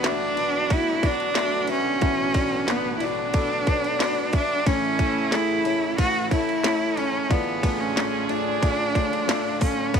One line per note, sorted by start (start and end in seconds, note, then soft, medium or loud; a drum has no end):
0.00 1.98 A1 medium
0.00 1.98 A2 medium
0.00 4.62 B2 medium
0.00 4.62 D3 medium
0.00 4.29 F#3 medium
0.00 4.63 F#3 medium
0.00 0.37 A3 medium
0.00 0.04 B3 loud
0.00 0.05 D4 medium
0.00 0.05 F#4 medium
0.00 4.30 F#4 loud
0.00 0.37 D5 medium
0.00 snare loud
0.04 0.30 B3 medium
0.04 0.30 D4 medium
0.04 0.38 D4 medium
0.04 0.73 D4 medium
0.04 0.30 F#4 medium
0.04 0.37 F#4 medium
0.04 0.36 B4 medium
0.04 0.30 E5 medium
0.04 clap medium
0.04 ride medium
0.36 0.62 B3 medium
0.36 0.62 D4 medium
0.36 0.62 F#4 medium
0.36 0.70 F#4 medium
0.36 0.70 B4 medium
0.36 0.63 D5 medium
0.36 ride medium
0.40 0.70 D4 soft
0.69 1.03 A3 loud
0.69 0.95 B3 medium
0.69 0.95 D4 medium
0.69 1.04 D4 medium
0.69 1.07 E4 loud
0.69 0.95 F#4 medium
0.69 1.03 F#4 medium
0.69 0.96 B4 medium
0.69 1.01 B4 medium
0.69 kick loud
0.69 ride medium
1.02 1.28 B3 medium
1.02 1.28 D4 medium
1.02 1.71 D4 loud
1.02 1.35 D4 soft
1.02 1.29 F#4 medium
1.02 1.36 F#4 medium
1.02 1.36 B4 medium
1.02 1.29 D5 medium
1.02 kick medium
1.02 ride medium
1.20 ride soft
1.34 1.69 A3 medium
1.34 1.61 B3 loud
1.34 1.61 D4 medium
1.34 1.69 D4 medium
1.34 1.61 F#4 medium
1.34 1.69 F#4 medium
1.34 1.67 B4 medium
1.34 1.61 E5 medium
1.34 snare loud
1.34 clap medium
1.34 ride medium
1.67 1.94 B3 medium
1.67 2.72 C#4 loud
1.67 1.94 D4 medium
1.67 1.94 F#4 medium
1.67 2.02 F#4 medium
1.67 2.02 B4 medium
1.67 1.94 E5 medium
1.67 ride medium
1.72 2.01 D4 soft
2.01 4.62 A1 medium
2.01 4.62 A2 medium
2.01 2.35 A3 medium
2.01 2.27 B3 medium
2.01 2.27 D4 medium
2.01 2.35 D4 medium
2.01 2.27 F#4 medium
2.01 2.35 F#4 medium
2.01 2.34 B4 loud
2.01 2.27 E5 loud
2.01 kick loud
2.01 ride medium
2.34 2.60 B3 medium
2.34 2.60 D4 medium
2.34 2.60 F#4 medium
2.34 2.68 F#4 medium
2.34 2.68 B4 medium
2.34 2.60 D5 medium
2.34 kick medium
2.34 ride medium
2.38 2.67 D4 soft
2.67 3.01 A3 medium
2.67 2.93 B3 medium
2.67 2.96 B3 medium
2.67 2.93 D4 medium
2.67 3.02 D4 medium
2.67 2.94 F#4 medium
2.67 3.01 F#4 medium
2.67 2.94 B4 loud
2.67 2.99 B4 medium
2.67 snare loud
2.67 clap medium
2.67 ride medium
2.97 3.26 B3 medium
2.97 3.05 E4 medium
2.97 3.34 B4 medium
2.97 ride medium
3.01 3.26 D4 medium
3.01 3.33 D4 soft
3.01 4.35 D4 medium
3.01 3.27 F#4 medium
3.01 3.34 F#4 medium
3.01 3.27 D5 medium
3.33 3.67 A3 medium
3.33 3.59 B3 medium
3.33 3.67 D4 medium
3.33 3.60 D4 medium
3.33 3.60 F#4 medium
3.33 3.67 F#4 medium
3.33 3.60 A4 medium
3.33 3.65 B4 loud
3.33 kick loud
3.33 ride medium
3.66 3.92 B3 medium
3.66 3.93 D4 medium
3.66 3.99 D4 medium
3.66 4.00 F#4 medium
3.66 3.93 F#4 medium
3.66 4.00 B4 medium
3.66 3.93 C#5 medium
3.66 kick medium
3.66 ride medium
3.84 ride soft
3.99 4.33 A3 medium
3.99 4.25 B3 loud
3.99 4.33 D4 medium
3.99 4.25 D4 loud
3.99 4.26 F#4 medium
3.99 4.32 F#4 medium
3.99 4.31 B4 medium
3.99 4.26 D5 loud
3.99 snare loud
3.99 clap medium
3.99 ride medium
4.32 4.59 B3 medium
4.32 4.59 D4 medium
4.32 4.67 D4 soft
4.32 4.68 D4 medium
4.32 4.66 F#4 medium
4.32 4.59 F#4 medium
4.32 4.66 B4 medium
4.32 4.59 E5 medium
4.32 kick loud
4.32 ride medium
4.65 7.26 A1 medium
4.65 4.99 A2 medium
4.65 7.26 A2 medium
4.65 7.27 C#3 medium
4.65 4.99 E3 medium
4.65 5.96 E3 medium
4.65 9.90 A3 medium
4.65 4.91 A3 loud
4.65 5.00 A3 medium
4.65 4.92 C#4 medium
4.65 5.35 C#4 medium
4.65 4.99 C#4 medium
4.65 7.27 E4 medium
4.65 4.92 E4 medium
4.65 4.99 E4 loud
4.65 5.96 E4 loud
4.65 4.98 A4 loud
4.65 4.92 C#5 loud
4.65 kick loud
4.65 ride medium
4.99 5.24 A3 medium
4.99 5.30 A3 medium
4.99 5.25 C#4 medium
4.99 5.31 C#4 medium
4.99 5.33 E4 medium
4.99 5.25 E4 medium
4.99 5.32 A4 medium
4.99 5.25 A4 medium
4.99 kick medium
4.99 ride medium
5.31 5.65 A3 medium
5.31 5.57 A3 medium
5.31 5.57 C#4 medium
5.31 5.65 C#4 medium
5.31 5.58 E4 medium
5.31 5.98 E4 medium
5.31 5.64 E4 medium
5.31 5.58 G#4 loud
5.31 5.63 A4 medium
5.31 snare loud
5.31 clap medium
5.31 ride medium
5.64 5.90 A3 medium
5.64 5.97 A3 medium
5.64 5.90 C#4 medium
5.64 5.97 C#4 medium
5.64 5.97 E4 medium
5.64 5.91 E4 medium
5.64 5.97 A4 medium
5.64 5.91 C#5 medium
5.64 ride medium
5.97 6.30 A2 medium
5.97 6.31 E3 medium
5.97 6.31 A3 medium
5.97 6.23 A3 medium
5.97 6.31 C#4 medium
5.97 6.24 C#4 medium
5.97 6.30 E4 medium
5.97 6.24 E4 medium
5.97 6.29 F#4 loud
5.97 6.29 A4 medium
5.97 6.24 B4 medium
5.97 kick medium
5.97 ride medium
6.31 6.56 A3 medium
6.31 6.96 A3 medium
6.31 6.63 A3 soft
6.31 6.56 C#4 medium
6.31 6.64 C#4 medium
6.31 6.56 E4 medium
6.31 7.00 E4 loud
6.31 6.64 E4 medium
6.31 6.64 A4 medium
6.31 6.96 A4 medium
6.31 6.56 C#5 medium
6.31 kick medium
6.31 ride medium
6.49 ride soft
6.63 6.89 A3 medium
6.63 6.97 A3 medium
6.63 6.89 C#4 medium
6.63 6.98 C#4 medium
6.63 6.89 E4 medium
6.63 6.97 E4 medium
6.63 6.96 A4 medium
6.63 6.90 C#5 medium
6.63 snare loud
6.63 clap medium
6.63 ride medium
6.97 7.22 A3 medium
6.97 7.30 A3 medium
6.97 7.22 C#4 medium
6.97 7.33 C#4 medium
6.97 7.31 C#4 soft
6.97 7.23 E4 medium
6.97 7.31 E4 medium
6.97 7.30 A4 medium
6.97 7.23 C#5 medium
6.97 ride medium
7.30 9.90 A1 medium
7.30 7.63 A2 medium
7.30 9.90 A2 medium
7.30 10.00 A2 medium
7.30 7.63 D3 medium
7.30 10.00 D3 medium
7.30 7.55 A3 medium
7.30 9.57 A3 medium
7.30 7.63 A3 medium
7.30 7.82 B3 medium
7.30 7.55 D4 medium
7.30 7.64 D4 medium
7.30 7.55 F4 medium
7.30 9.92 F4 medium
7.30 7.62 F4 loud
7.30 9.57 G#4 loud
7.30 7.61 A4 loud
7.30 7.56 D5 loud
7.30 kick loud
7.30 ride medium
7.63 7.88 A3 medium
7.63 7.94 A3 medium
7.63 7.88 D4 medium
7.63 7.95 D4 medium
7.63 7.96 F4 medium
7.63 7.89 F4 medium
7.63 7.96 A4 medium
7.63 7.89 B4 medium
7.63 kick medium
7.63 ride medium
7.80 8.31 C#4 medium
7.95 8.28 A3 medium
7.95 8.21 A3 medium
7.95 8.21 D4 medium
7.95 8.29 D4 medium
7.95 8.21 F4 medium
7.95 8.28 F4 medium
7.95 8.27 A4 medium
7.95 8.22 C#5 medium
7.95 snare loud
7.95 clap medium
7.95 ride medium
8.28 8.54 A3 medium
8.28 8.62 A3 medium
8.28 8.54 D4 medium
8.28 9.61 D4 medium
8.28 8.62 D4 soft
8.28 8.62 F4 medium
8.28 8.54 F4 medium
8.28 8.61 A4 medium
8.28 8.55 D5 medium
8.28 ride medium
8.61 8.95 A2 medium
8.61 8.95 D3 medium
8.61 8.87 A3 medium
8.61 8.95 A3 medium
8.61 8.87 D4 medium
8.61 8.96 D4 medium
8.61 8.87 F4 medium
8.61 8.95 F4 medium
8.61 8.93 A4 loud
8.61 8.87 D5 medium
8.61 kick loud
8.61 ride medium
8.95 9.20 A3 medium
8.95 9.26 A3 soft
8.95 9.20 D4 medium
8.95 9.27 D4 medium
8.95 9.20 F4 medium
8.95 9.28 F4 medium
8.95 9.28 A4 medium
8.95 9.21 C#5 medium
8.95 kick medium
8.95 ride medium
9.13 ride soft
9.27 9.60 A3 medium
9.27 9.53 A3 loud
9.27 9.53 D4 loud
9.27 9.61 D4 medium
9.27 9.53 F4 medium
9.27 9.60 F4 medium
9.27 9.53 A4 loud
9.27 9.59 A4 medium
9.27 snare loud
9.27 clap medium
9.27 ride medium
9.60 9.86 A3 medium
9.60 9.92 A3 soft
9.60 9.96 C#4 medium
9.60 9.86 D4 medium
9.60 9.93 D4 medium
9.60 9.86 F4 medium
9.60 9.94 F4 medium
9.60 9.93 A4 medium
9.60 9.86 D5 medium
9.60 kick loud
9.60 snare soft
9.60 open hi-hat medium
9.60 ride medium
9.93 10.00 A1 medium
9.93 10.00 A2 medium
9.93 10.00 F#3 medium
9.93 10.00 A3 medium
9.93 10.00 B3 medium
9.93 10.00 D4 medium
9.93 10.00 F#4 medium
9.93 10.00 F#4 loud
9.93 10.00 F#4 medium
9.93 10.00 B4 medium
9.93 10.00 D5 loud
9.93 kick loud
9.93 ride medium